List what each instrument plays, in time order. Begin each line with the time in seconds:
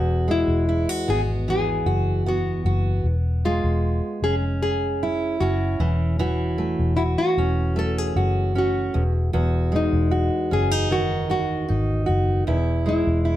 Already playing: fingered electric bass E1, steel-string acoustic guitar E2 F#4
0.28 steel-string acoustic guitar G#3, nylon-string guitar E4
0.48 fingered electric bass E1
0.69 steel-string acoustic guitar E4
0.89 steel-string acoustic guitar F#4
1.08 fingered electric bass G#1, steel-string acoustic guitar B3, nylon-string guitar G#4
1.48 steel-string acoustic guitar E3, nylon-string guitar G#4
1.86 fingered electric bass F#1, steel-string acoustic guitar F#4
2.26 steel-string acoustic guitar B3, nylon-string guitar F#4
2.65 fingered electric bass F#1, steel-string acoustic guitar F#4
3.04 fingered electric bass E1
3.45 steel-string acoustic guitar G#3, nylon-string guitar F4
3.64 fingered electric bass E1
4.22 fingered electric bass F1, steel-string acoustic guitar C#4, nylon-string guitar G#4
4.63 nylon-string guitar G#4
5.03 steel-string acoustic guitar E4
5.41 fingered electric bass F#1, steel-string acoustic guitar C#4, nylon-string guitar F#4
5.80 fingered electric bass E1, steel-string acoustic guitar E3
6.19 steel-string acoustic guitar E3 F#4
6.58 steel-string acoustic guitar A3
6.79 fingered electric bass E1
6.97 nylon-string guitar E4, steel-string acoustic guitar F#4
7.18 nylon-string guitar F#4
7.37 fingered electric bass E1, steel-string acoustic guitar C#4
7.76 steel-string acoustic guitar A3, nylon-string guitar A4
7.98 nylon-string guitar G#4
8.16 fingered electric bass F#1, steel-string acoustic guitar F#4
8.55 steel-string acoustic guitar C#4, nylon-string guitar F#4
8.94 fingered electric bass E1, steel-string acoustic guitar E2
9.33 fingered electric bass E1, steel-string acoustic guitar E2 F#4
9.72 steel-string acoustic guitar G#3, nylon-string guitar D#4
9.93 fingered electric bass E1
10.11 steel-string acoustic guitar F#4
10.51 fingered electric bass F#1, steel-string acoustic guitar C#4, nylon-string guitar G#4
10.71 steel-string acoustic guitar D#4
10.91 steel-string acoustic guitar D#3, nylon-string guitar F#4
11.30 steel-string acoustic guitar F#4, nylon-string guitar F#4
11.69 fingered electric bass G#1, steel-string acoustic guitar D#4
12.06 fingered electric bass F#1, steel-string acoustic guitar F#4
12.47 fingered electric bass E1, steel-string acoustic guitar E2 E4
12.86 steel-string acoustic guitar G#3, nylon-string guitar E4
13.07 fingered electric bass E1
13.25 steel-string acoustic guitar E4